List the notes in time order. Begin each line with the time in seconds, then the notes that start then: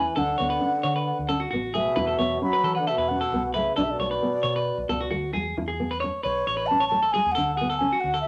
Already playing: E3 B4 G#5
0.16 D2 D3 D4 A4 F#5
0.38 D2 B3 C#5
0.50 B4
0.61 C#4
0.83 D3 C#5
0.96 B4
1.19 D2
1.28 C#4 A4
1.40 F#4
1.51 A1 B3 F#4
1.74 B2 A3 G#4 E5
1.96 E2 E4 B4
2.07 A4
2.19 E2 B3 C#5
2.42 F#3 C#4 B5
2.53 B4
2.63 E3 A4
2.75 D3 B4 F#5
2.87 B2 A4 E5
2.98 E2 B4
3.08 B2 C#4 F#5
3.21 A4
3.32 C2 B3
3.54 C#3 A3 B4 E5
3.76 B1 B2 D4 A4 D5
3.83 C#3 E5
3.91 B2 D5
3.99 B1 A3 C#5
4.11 B4
4.23 B3
4.43 B2 C#5
4.56 B4
4.78 B1
4.89 C#2 B3 A4
5.01 F#4
5.11 D2 A3 F#4
5.33 E2 G#3 G#4
5.57 E2 E4
5.68 G#4
5.80 B3
5.91 B4
6.00 C#5, muted nylon-string guitar stroke
6.23 B1 B4 C#5
6.46 A1 C#5
6.57 B4
6.67 A5
6.71 C#4
6.80 C#5
6.88 A3 A5
7.03 A4
7.12 G#3 G#4 G#5
7.26 E2
7.32 A4 F#5
7.37 D2 D4
7.55 G#4 F#5
7.61 B3
7.70 A4
7.78 C#4 G#5
7.93 F#4
8.00 D2 F#5
8.14 A4
8.21 E5